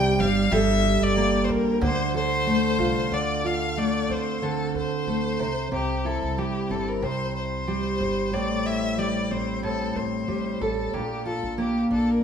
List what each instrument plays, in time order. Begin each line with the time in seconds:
Already playing: upright bass C2, steel-string acoustic guitar C3 G3 E4 D5, violin G5
0.19 upright bass G1, steel-string acoustic guitar G3, violin F5
0.52 upright bass G1, steel-string acoustic guitar G3 A4, violin E5
0.84 steel-string acoustic guitar G4
1.02 upright bass G1, violin D5
1.16 steel-string acoustic guitar A#3
1.44 violin C5
1.49 upright bass A#1, violin A#4
1.81 upright bass D2, steel-string acoustic guitar D3, violin C5
2.14 steel-string acoustic guitar A4, violin C5
2.47 steel-string acoustic guitar A3
2.79 upright bass C2, steel-string acoustic guitar F4
3.11 upright bass D2, steel-string acoustic guitar D3, violin D5
3.44 steel-string acoustic guitar F4, violin F5
3.77 steel-string acoustic guitar A3, violin D5
4.09 upright bass D2, steel-string acoustic guitar C4, violin C5
4.42 steel-string acoustic guitar D3, violin A4
4.74 upright bass D2, violin C5
5.07 upright bass D2, steel-string acoustic guitar A3
5.39 upright bass C2, steel-string acoustic guitar C3
5.72 upright bass C2, steel-string acoustic guitar C3, violin G4
6.05 steel-string acoustic guitar E4, violin A4
6.22 upright bass C2
6.38 steel-string acoustic guitar G3, violin G4
6.70 upright bass G1, steel-string acoustic guitar C4, violin A4
6.88 violin A#4
7.02 upright bass C2, steel-string acoustic guitar C3, violin C5
7.36 violin C5
7.67 steel-string acoustic guitar G3
8.00 upright bass G1, steel-string acoustic guitar C5
8.32 upright bass A1, steel-string acoustic guitar A2, violin D5
8.66 steel-string acoustic guitar E4, violin E5
8.98 steel-string acoustic guitar G3, violin D5
9.30 upright bass A1, steel-string acoustic guitar C4, violin C5
9.63 steel-string acoustic guitar A2, violin A4
9.96 upright bass A1, violin C5
10.28 upright bass A1, steel-string acoustic guitar G3
10.61 upright bass A1, steel-string acoustic guitar A4, violin A4
10.93 upright bass A#1, steel-string acoustic guitar A#2, violin G4
11.25 steel-string acoustic guitar F4, violin A4
11.43 upright bass A#1
11.58 steel-string acoustic guitar A#3, violin G4
11.91 upright bass A#1, steel-string acoustic guitar D4, violin A4
12.10 violin A#4